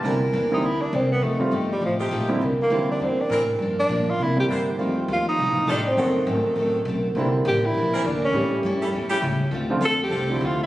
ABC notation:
X:1
M:4/4
L:1/8
Q:"Swing" 1/4=202
K:Cmix
V:1 name="Saxophone section"
[E,CDB]4- [E,CDB] z3 | z4 z [F,A,_EG]3 | z6 [E,CDB] z | z6 [B,DEc] z |
z6 [G,_EFA] z | [^F,C^DA]4- [F,CDA] z3 | z4 z [E,CDB] z2 | z3 [G,^CEA] z [G,CEG] z2 |
z2 [F,CDA] z [F,CDA]3 z |]
V:2 name="Tenor saxophone"
z3 _E =E D C =B, | A,3 G, F, z3 | z B,2 D C D z2 | z D2 F E G z2 |
z2 F _E3 D C- | C2 z6 | z2 G E3 D _D- | _D2 z6 |
z2 A G3 F F |]
V:3 name="Upright piano"
[D,G,B,CE] z2 [D,G,B,CE] z4 | z [_E,G,A,CF] z4 z [D,G,B,C=E] | z2 [D,G,B,CE]3 z3 | z4 z [D,G,B,CE]3 |
[_E,G,A,CF]4- [E,G,A,CF] z3 | [^D,^F,A,C^F]4- [D,F,A,CF] z3 | [D,G,B,CE]4- [D,G,B,CE] z3 | [E,G,A,^CG]4- [E,G,A,CG] z3 |
z [D,F,A,CF] z3 [D,F,A,CE]3 |]
V:4 name="Steel-string acoustic guitar"
[C,E,B,D] z [C,E,B,D] z [C,E,B,D] z [C,E,B,D] z | [F,A,_EG] z [F,A,EG] z [F,A,EG] z [F,A,EG] z | [C,E,B,D] z [C,E,B,D] z [C,E,B,D] z [C,E,B,D] z | [G,,F,B,D] z [G,,F,B,D] z [C,E,B,D] z [C,E,B,D] z |
[F,A,_EG] z [F,A,EG] z [F,A,EG] z [F,A,EG] z | [^F,,^D,A,C] z [F,,D,A,C] z [F,,D,A,C] z [F,,D,A,C] z | [C,E,B,D] z [C,E,B,D] z [C,E,B,D] z [C,E,B,D] z | [A,,G,^CE] z [A,,G,CE] z [A,,G,CE] z [A,,G,CE] z |
[D,A,CF] z [D,A,CF] z [D,A,CF] z [D,A,CF] z |]
V:5 name="Upright bass" clef=bass
C,,2 E,,2 D,,2 C,,2 | F,,, z G,,,2 A,,,2 B,,,2 | C,, z D,,2 E,,2 A,,2 | G,,2 B,,2 C,2 G,,2 |
F,,2 _E,,2 (3C,, A,,, F,,, A,,,2 | ^F,,,2 _A,,, z =A,,,2 =B,,,2 | C,,2 A,,,2 B,,,2 D,,2 | A,,2 G,,2 E,, z ^C,,2 |
D,,2 F,,2 C,,2 D,,2 |]